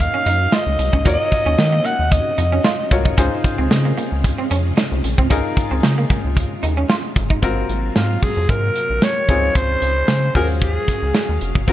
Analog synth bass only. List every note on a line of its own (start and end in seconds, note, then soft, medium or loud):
0.26 0.48 F#2 medium
0.67 0.77 C#2 medium
0.79 0.91 C2 medium
0.93 1.03 C#2 loud
1.06 1.17 D#2 loud
1.46 1.56 D#2 medium
1.59 1.80 D#3 loud
1.99 2.21 D#2 medium
2.38 2.60 F2 loud
2.91 3.13 C2 loud
3.18 3.29 C#2 loud
3.59 3.69 C#2 medium
3.71 3.93 C#3 medium
4.12 4.33 C#2 medium
4.51 4.73 F2 medium
4.92 5.02 C2 loud
5.04 5.16 A#1 medium
5.18 5.28 C2 medium
5.31 5.42 C#2 loud
5.71 5.81 C#2 medium
5.84 6.05 C#3 loud
6.25 6.46 C#2 medium
6.63 6.85 D#2 medium
7.16 7.38 F#1 loud
7.43 7.64 G#1 loud
7.69 7.91 G#1 loud
7.96 8.18 G#2 medium
8.37 8.47 F2 medium
8.49 8.71 G#2 loud
8.90 9.00 A#1 medium
9.29 9.50 C#2 loud
9.55 9.77 C#2 loud
9.82 10.04 C#2 loud
10.09 10.30 C#3 medium
10.35 10.78 D#2 loud
11.03 11.12 C#2 medium
11.29 11.39 D#2 medium
11.42 11.53 F1 medium
11.55 11.65 F#1 medium
11.68 11.73 G#1 loud